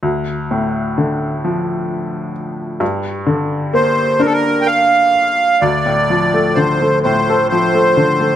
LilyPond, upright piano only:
\new Staff \with { instrumentName = "Upright piano" } { \clef bass \time 6/8 \key d \minor \tempo 4. = 43 d,8 a,8 d8 f4. | g,8 d8 bes8 d'4. | d,16 a,16 f16 a16 d16 a16 a,16 a'16 f16 a16 d16 a16 | }